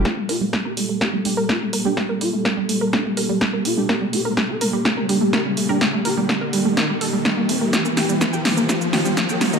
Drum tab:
HH |--o---o---o---o-|--o---o---o---o-|--o---o---o---o-|--o---o---o---o-|
SH |----------------|----------------|----------------|----------------|
SD |o---o---o---o---|o---o---o---o---|o---o---o---o---|o---o---o---o---|
BD |o---o---o---o---|o---o---o---o---|o---o---o---o---|o---o---o---o---|

HH |--o---o---o---o-|
SH |xxxxxx-xxx-xxxxx|
SD |o-o-o-o-o-o-o-o-|
BD |o---o---o---o---|